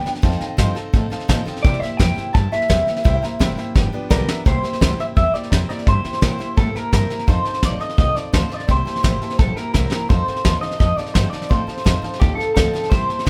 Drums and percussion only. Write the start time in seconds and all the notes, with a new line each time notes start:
0.06 snare
0.15 snare
0.23 kick, snare
0.32 snare
0.41 snare
0.58 kick, snare, hi-hat pedal
0.76 snare
0.94 kick, snare
1.11 snare
1.20 snare
1.29 kick, snare, hi-hat pedal
1.47 snare
1.56 snare
1.65 kick, snare
1.74 snare
1.83 snare
2.00 kick, snare, hi-hat pedal
2.18 snare
2.35 kick, snare
2.53 snare
2.61 snare
2.70 kick, snare, hi-hat pedal
2.88 snare
2.96 snare
3.05 kick, snare
3.24 snare
3.40 kick, snare, hi-hat pedal
3.58 snare
3.76 kick, snare
4.11 kick, snare, hi-hat pedal
4.29 snare
4.46 kick, snare
4.64 snare
4.73 snare
4.81 kick, snare, hi-hat pedal
5.00 snare
5.17 kick, snare
5.35 snare
5.43 snare
5.52 kick, snare, hi-hat pedal
5.70 snare
5.79 snare
5.87 kick, snare
6.05 snare
6.13 snare
6.22 kick, snare, hi-hat pedal
6.40 snare
6.57 kick, snare
6.76 snare
6.93 kick, snare, hi-hat pedal
7.10 snare
7.19 snare
7.28 kick, snare
7.45 snare
7.54 snare
7.63 kick, snare, hi-hat pedal
7.81 snare
7.89 snare
7.98 kick, snare
8.16 snare
8.34 kick, snare, hi-hat pedal
8.51 snare
8.60 snare
8.69 kick, snare
8.87 snare
8.96 snare
9.04 kick, snare, hi-hat pedal
9.22 snare
9.30 snare
9.39 kick, snare
9.57 snare
9.74 kick, snare, hi-hat pedal
9.92 snare
10.10 kick, snare
10.28 snare
10.36 snare
10.45 kick, snare, hi-hat pedal
10.63 snare
10.71 snare
10.80 kick, snare
10.98 snare
11.06 snare
11.15 kick, snare, hi-hat pedal
11.33 snare
11.42 snare
11.51 kick, snare
11.69 snare
11.77 snare
11.86 kick, snare, hi-hat pedal
12.04 snare
12.13 snare
12.22 kick, snare
12.40 snare
12.57 kick, snare, hi-hat pedal
12.75 snare
12.84 snare
12.92 kick, snare
13.10 snare
13.19 snare
13.27 kick